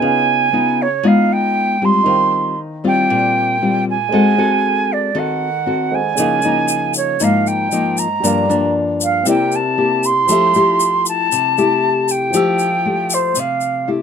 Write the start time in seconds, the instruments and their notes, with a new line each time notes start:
Already playing: nylon-string guitar B3 D#4 F4, flute G#5
0.00 nylon-string guitar C#3, grand piano C#4 G#4 B4 D#5
0.04 grand piano F5
0.53 nylon-string guitar B3 D#4 F4
0.82 flute C#5
1.03 nylon-string guitar G#3 B3 D#4 F4, flute F5
1.32 flute G5
1.82 nylon-string guitar G3 C4 F4, flute C6
2.03 nylon-string guitar D#3, grand piano D#4 A#4 C5
2.08 grand piano F5 G5
2.84 nylon-string guitar G3 C4 F4, flute G5
3.10 nylon-string guitar A#2
3.62 nylon-string guitar G3 C4 F4
3.90 flute G#5
4.09 grand piano G#3 A4 C5, nylon-string guitar G#3 C4
4.13 nylon-string guitar F#4 A4, grand piano D#5 F#5
4.38 nylon-string guitar C4 F#4 A4
4.92 flute D5
5.15 nylon-string guitar D#3 C4 F#4 A4, flute F#5
5.66 nylon-string guitar C4 F#4 A4
5.91 grand piano G#3 A4 C5 D#5 F#5, flute G#5
6.15 nylon-string guitar C#3 F3 A#3 D#4, grand piano C#4 G#4 A#4, shaker
6.19 grand piano D#5 F5
6.42 nylon-string guitar F3 A#3 D#4, shaker
6.68 shaker
6.94 flute C#5, shaker
7.20 nylon-string guitar G#2 F3 A#3 D#4, flute F5, shaker
7.47 flute G5, shaker
7.72 nylon-string guitar F3 A#3 D#4, shaker
7.97 flute A#5, shaker
8.20 nylon-string guitar G2 F3, grand piano G3 G4 A#4
8.24 nylon-string guitar A#3 D4, grand piano D5 F5, shaker
8.49 nylon-string guitar F3 A#3 D4, shaker
9.01 flute F5, shaker
9.23 nylon-string guitar C3 A#3 E4 G4, grand piano C4 G4 A#4, shaker
9.28 grand piano D5 E5, flute G5
9.52 flute A5, shaker
9.78 nylon-string guitar A#3 E4 G4
10.03 flute C6, shaker
10.27 grand piano F3 G4 A4 C5, nylon-string guitar F3 A3 E4 G4, shaker
10.32 grand piano E5
10.54 nylon-string guitar A3 E4 G4, shaker
10.80 shaker
11.06 flute A5, shaker
11.32 nylon-string guitar C3, shaker
11.58 nylon-string guitar A3 E4 G4, shaker
12.08 flute G5, shaker
12.30 grand piano F3 G4 A4, nylon-string guitar F3 A3 E4, shaker
12.35 nylon-string guitar G4, grand piano C5 E6
12.59 shaker
12.85 nylon-string guitar A3 G4
13.10 flute C5, shaker
13.35 nylon-string guitar C3, flute F5, shaker
13.61 shaker
13.87 nylon-string guitar A3 E4 G4